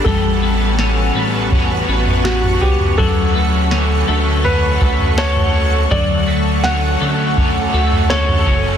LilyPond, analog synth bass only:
\new Staff \with { instrumentName = "Analog synth bass" } { \clef bass \time 4/4 \key d \major \tempo 4 = 82 a,,4. a,,4 a,,4 cis,8 | d,4. d,4 d,4. | d,4. d,4 d,4 fis,,8 | }